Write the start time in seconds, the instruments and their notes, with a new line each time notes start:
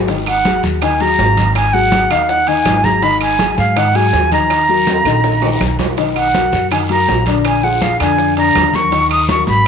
Already playing: upright bass G#1
0.08 grand piano D#3 D#4 D#5, high bongo, high conga, high timbale, long guiro, maracas
0.26 flute F#5, high conga, high timbale, claves, maracas
0.45 grand piano F#3 F#4 G#4, high bongo, high conga, high timbale, low timbale, short guiro, maracas
0.63 upright bass D#2, high conga, short guiro, maracas
0.81 grand piano D#3 D#4 D#5, flute G#5, high bongo, high conga, high timbale, long guiro, claves, maracas
1.00 grand piano F#3 F#4 G#4, flute A#5, high conga, high timbale, maracas
1.18 upright bass G#1, high bongo, low bongo, high conga, low timbale, short guiro, maracas
1.37 grand piano D#3 D#4 D#5, high conga, high timbale, short guiro, maracas
1.55 flute G#5, high bongo, high conga, high timbale, long guiro, claves, maracas
1.73 grand piano F#3 F#4 G#4, flute F#5, high bongo, high conga, maracas
1.92 high bongo, high conga, high timbale, low timbale, short guiro, maracas
2.10 upright bass D#2, grand piano D#3 D#4 D#5, flute F5, high timbale, short guiro, claves, maracas
2.29 flute F#5, high bongo, high conga, long guiro, maracas
2.47 grand piano D#3 D#4 D#5, flute G#5, high bongo, high conga, high timbale, maracas
2.65 upright bass G#1, high bongo, low bongo, high conga, high timbale, low timbale, short guiro, claves, maracas
2.84 grand piano F#3 F#4 G#4, flute A#5, high bongo, high conga, short guiro, maracas
3.02 grand piano D#3 D#4 D#5, flute B5, high bongo, high conga, high timbale, long guiro, maracas
3.21 flute G#5, high conga, high timbale, claves, maracas
3.39 grand piano F#3 F#4 G#4, high bongo, high conga, high timbale, low timbale, short guiro, maracas
3.58 upright bass G#2, flute F5, high conga, short guiro, maracas
3.76 grand piano D#3 D#4 D#5, flute F#5, high bongo, high conga, high timbale, long guiro, claves, maracas
3.94 grand piano F#3 F#4 G#4, flute G#5, high conga, high timbale, maracas
4.13 upright bass D#2, high bongo, low bongo, high conga, low timbale, short guiro, maracas
4.32 grand piano D#3 D#4 D#5, flute A#5, high conga, high timbale, short guiro, maracas
4.50 high bongo, high conga, high timbale, long guiro, claves, maracas
4.68 grand piano F#3 F#4 A#4, high bongo, high conga, maracas
4.87 high bongo, high conga, high timbale, short guiro, maracas
5.05 upright bass A#1, grand piano D#3 D#4 D#5, high conga, high timbale, short guiro, claves, maracas
5.24 high bongo, high conga, high timbale, long guiro, maracas
5.42 grand piano D#3 D#4 D#5, high bongo, high conga, low timbale, maracas
5.60 upright bass B1, high bongo, low bongo, high conga, short guiro, claves, maracas
5.79 grand piano F#3 F#4 A#4, high bongo, high conga, low timbale, short guiro, maracas
5.97 grand piano D#3 D#4 D#5, high bongo, high conga, high timbale, long guiro, maracas
6.16 flute F#5, high conga, high timbale, claves, maracas
6.34 grand piano F#3 F#4 A#4, high bongo, high conga, high timbale, low timbale, short guiro, maracas
6.52 upright bass F#2, high conga, short guiro, maracas
6.71 grand piano D#3 D#4 D#5, flute G#5, high bongo, high conga, high timbale, long guiro, claves, maracas
6.89 grand piano F#3 F#4 A#4, flute A#5, high conga, high timbale, maracas
7.07 upright bass A#1, high bongo, low bongo, high conga, low timbale, short guiro, maracas
7.26 grand piano D3 D4 D5, high conga, high timbale, short guiro, maracas
7.44 flute G#5, high bongo, high conga, high timbale, long guiro, claves, maracas
7.63 grand piano F3 F4 G#4, flute F#5, high bongo, high conga, maracas
7.82 flute F5, high bongo, high conga, high timbale, low timbale, short guiro, maracas
8.00 upright bass F2, grand piano D3 D4 D5, flute G#5, high conga, high timbale, short guiro, claves, maracas
8.18 high bongo, high conga, long guiro, maracas
8.37 grand piano D3 D4 D5, flute A#5, high bongo, high conga, high timbale, maracas
8.55 upright bass D#2, high bongo, low bongo, high conga, high timbale, low timbale, short guiro, claves, maracas
8.73 grand piano F#3 F#4 A#4, flute C#6, high bongo, high conga, short guiro, maracas
8.91 grand piano D#3 D#4 D#5, high bongo, high conga, high timbale, long guiro, maracas
9.11 flute D#6, high conga, high timbale, claves, maracas
9.29 grand piano F#3 F#4 A#4, flute C#6, high bongo, high conga, high timbale, low timbale, short guiro, maracas
9.47 upright bass G#1, flute B5, high conga, short guiro, maracas